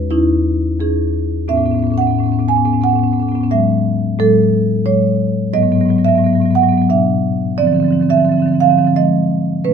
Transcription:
0.11 E2 C#4 D#4 E4
0.80 E2 C#4 D#4 G#4
1.48 A2 B3 C#4 E5
1.56 A2 B3 C#4
1.64 A2 B3 C#4
1.71 A2 B3 C#4
1.79 B3 C#4
1.84 A2 C#4
1.90 A2 B3 C#4
1.98 A2 B3 C#4 F#5
2.07 A2 B3 C#4
2.15 B3 C#4
2.20 A2 B3
2.26 A2 C#4
2.32 B3 C#4
2.39 A2 B3 C#4
2.48 A2 B3 C#4 G#5
2.56 A2 B3 C#4
2.65 A2 B3 C#4
2.73 A2 B3 C#4
2.81 A2 B3 C#4 F#5
2.89 B3 C#4
2.94 A2 C#4
2.99 B3
3.03 A2 C#4
3.08 B3 C#4
3.13 A2 B3
3.20 A2 B3 C#4
3.27 B3 C#4
3.32 A2 B3 C#4
3.41 A2 B3 C#4
3.51 A2 F#3 G#3 E5
4.19 A2 F#3 G#3 A4
4.86 A2 F#3 G#3 C#5
5.53 G#2 F#3 B3 D#5
5.62 G#2 F#3 B3
5.72 G#2 F#3 B3
5.80 F#3 B3
5.85 G#2
5.89 F#3 B3
5.96 G#2 F#3 B3
6.05 G#2 F#3 B3 E5
6.15 G#2 F#3 B3
6.24 F#3 B3
6.30 G#2 B3
6.35 F#3
6.40 G#2 B3
6.45 F#3
6.50 G#2 F#3 B3
6.55 B3 F#5
6.62 G#2 F#3
6.69 F#3 B3
6.73 G#2
6.78 F#3 B3
6.89 B2 F#3 D4 E5
7.58 D3 F3 C4 D5
7.65 D3 F3 C4
7.73 D3 F3 C4
7.80 D3 C4
7.84 F3 C4
7.91 D3 F3
7.95 C4
8.00 D3 F3 C4
8.09 D3 F3 C4 E5
8.18 D3 F3 C4
8.25 D3 C4
8.29 F3 C4
8.34 D3 F3
8.40 D3 C4
8.46 F3 C4
8.52 D3 F3 C4
8.60 D3 F3 C4 F5
8.69 D3 F3 C4
8.78 D3 F3 C4
8.85 D3 F3 C4
8.96 F3 G#3 C4 D#5
9.65 B2 A3 C#4 B4

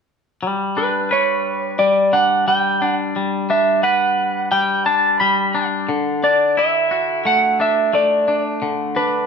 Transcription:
0.43 G3
0.77 D4 B4
1.11 B4 C#5
1.79 G3 D5
2.13 D4 F#5
2.48 G3 G5
2.82 D4 F#5
3.16 G3
3.50 D4 E5
3.83 B4 F#5
4.52 G3 G5
4.86 D4 A5
5.20 G3 B5
5.55 D4
5.89 D3
6.23 D4 D5
6.57 E4 E5
6.91 F#4
7.25 A3 F#5
7.60 D4 E5
7.93 A3 D5
8.28 D4
8.62 D3
8.96 D4 B4

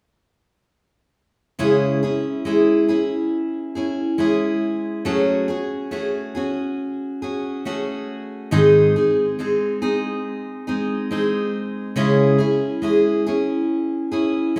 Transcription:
1.59 C#3 G#3 C#4 E4 G#4
2.03 C#4 E4 G#4
2.45 G#3 C#4 E4 G#4
2.88 C#4 E4 G#4
3.75 C#4 E4 G#4
4.18 G#3 C#4 E4 G#4
5.05 F#3 A3 C#4 F#4 G#4
5.48 C#4 F#4 G#4
5.91 A3 C#4 F#4 G#4
6.35 C#4 F#4 G#4
7.22 C#4 F#4 G#4
7.65 A3 C#4 F#4 G#4
8.51 G#2 D#3 G#3 C4 D#4 G#4
8.96 G#3 C4 D#4 G#4
9.39 G#3 C4 D#4 G#4
9.82 G#3 C4 D#4 G#4
10.67 G#3 C4 D#4 G#4
11.11 G#3 C4 D#4 G#4
11.96 C#3 G#3 C#4 E4 G#4
12.38 C#4 E4 G#4
12.82 G#3 C#4 E4 G#4
13.26 C#4 E4 G#4
14.12 C#4 E4 G#4
14.56 G#3 C#4

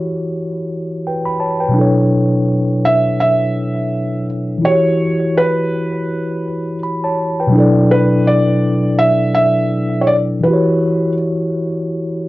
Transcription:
Already playing: E3 E4 F#4 G4 C#5
1.07 B4 G5
1.25 B5
1.40 C#5 A5
1.60 B4 G5
1.68 B2 F#3
1.74 D4 E4
1.79 A4 C#5
2.85 E5
3.20 E5
4.58 E3 E4
4.65 F#4 G4 C#5
4.71 C#5
5.38 B4
6.83 B5
7.04 C#5 A5
7.40 B4 G5
7.47 B2 F#3
7.52 D4 E4
7.57 A4 D5
7.91 B4
8.27 D5
8.99 E5
9.35 E5
10.01 C#5
10.07 D5
10.41 E3 E4 B4
10.47 F#4 G4
10.53 C#5

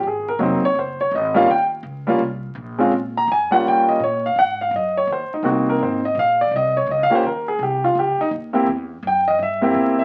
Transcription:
0.03 G#1
0.07 G#4
0.28 A#4
0.39 F1 F#3 A#3 C4 D#4
0.43 C5
0.62 C#5, muted upright bass stroke
0.75 F#1
0.79 C5
1.01 C#5
1.11 G#1 D#5
1.34 G3 A#3 C#4 F4 F5
1.47 D#2 G5
1.83 C#2
2.07 G3 A#3 C#4 F4
2.19 C2
2.55 A#1
2.78 G#3 C4 C#4 F4
2.91 A#2
3.17 A#5
3.27 F2
3.32 G#5
3.51 G3 A#3 C#4 F4 F#5
3.64 D#2
3.68 G5
3.89 D#5
4.00 A#2 C#5
4.26 F5
4.36 G#2 F#5
4.61 F5
4.71 F#2
4.76 D#5
4.97 C#5
5.07 D#2
5.12 C5
5.30 D#4, muted upright bass stroke
5.43 C2 A#3 C4 D#4 F#4
5.48 F#4
5.69 A#4
5.79 G#1 C5
6.05 D#5
6.15 A#1
6.19 F5
6.41 D5
6.51 C2
6.56 D#5
6.77 C#5
6.87 C#2
6.91 D#5
7.03 F5
7.10 A#3 C#4 F4 G4, muted upright bass stroke
7.15 C5
7.23 D#2 A#4
7.48 G#4
7.59 C2 G4
7.84 F4
7.95 C#2 G4
8.18 D#4, muted upright bass stroke
8.31 D#2
8.53 A#3 C4 E4 G4
8.67 E2
9.03 F#2
9.07 G5
9.28 D#5
9.39 G2 D#5 E5
9.61 A#3 C4 E4 G4
9.74 E2
9.99 E5

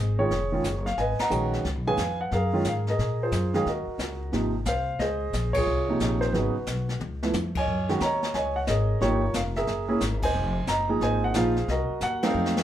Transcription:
Already playing: G#1 G#4 C5 D#5
0.19 D#3 G#3 C#4 F4 G#4 C#5
0.30 F1, brush sweep, snare
0.52 D#3 G#3 C#4 F4
0.63 F#1, snare, hi-hat pedal
0.86 F5, snare
0.97 G#1 B4 D#5 G#5, brush sweep, snare
1.19 D#5 F#5 A#5, muted upright bass stroke, snare, ride
1.30 A#1 D#3 G#3 C#4 F#4, hi-hat pedal
1.53 snare
1.64 C#2, brush sweep, snare
1.75 B1
1.87 G#1 D#3 G#3 C#4 G#4 B4 F5 G#5
1.97 F2, snare, hi-hat pedal
2.21 F#5
2.31 F#2 G#4 A#4 F5, brush sweep, snare
2.53 D#3 G#3 C#4 F4
2.64 G#2 F5, snare, hi-hat pedal
2.87 G#4 A#4 D#5, snare
2.98 A#2, brush sweep, snare
3.23 F4 G#4 C5
3.32 F#2, snare, hi-hat pedal
3.54 D#3 G#3 C#4 G#4 F5, snare
3.66 D#2 F#4 A#4 D#5, brush sweep, snare
3.87 muted upright bass stroke
3.98 C#2, snare, hi-hat pedal
4.32 G#1 C3 F3 A#3 D#4, brush sweep, snare
4.65 C2 C5 F5, snare, hi-hat pedal
4.99 C#2 G#4 C5 D#5, brush sweep, snare
5.33 A#1, snare, hi-hat pedal
5.53 F4 G#4 C#5, kick, ride
5.66 C2, brush sweep
5.89 C3 F3 A#3 D#4
6.00 A#1, snare, hi-hat pedal
6.21 C5, snare
6.32 G#1 C#3 F#3 B3 D#4 F#4 B4, brush sweep, snare
6.66 B1, snare, hi-hat pedal
6.89 snare
6.99 C#2, mid tom
7.23 F3 A3 B3 E4, snare
7.33 F2, hi-hat pedal, high tom
7.55 C#5 G#5, kick, ride
7.59 D#5
7.67 F#2, brush sweep
7.89 D#3 G#3 C#4 F#4, snare
8.00 D#2 C#5 D#5 A#5, snare, hi-hat pedal
8.23 snare
8.34 C#2 C#5 D#5 G#5, brush sweep, snare
8.56 F#5
8.67 G#1 G#4 A#4 D#5, snare, hi-hat pedal
9.01 G1 F3 A#3 D#4 F4 G4 A#4 C#5, brush sweep, snare
9.34 F1 F5, snare, hi-hat pedal
9.56 G#4 A#4 E5, snare
9.67 F#1, brush sweep, snare
9.88 A#3 C#4 E4 G#4
10.00 G#1, snare, hi-hat pedal
10.22 C5 D#5 G#5, kick, crash
10.34 F1, brush sweep
10.66 F#1 D#5 A#5, snare, hi-hat pedal
10.89 F3 A#3 D#4 G#4
11.00 G#1 C5 D#5 G#5, brush sweep, snare
11.24 F#5
11.34 A#1 F3 A#3 D#4 F4 G#4 C5 F5, snare, hi-hat pedal
11.56 snare
11.68 C2 F#4 A#4 D#5, brush sweep, snare
11.89 muted upright bass stroke
12.01 D#2 F#5, snare, hi-hat pedal
12.23 F#3 A3 C4 D#4 A4 C5 F5, snare, ride
12.34 F2
12.46 snare
12.57 snare

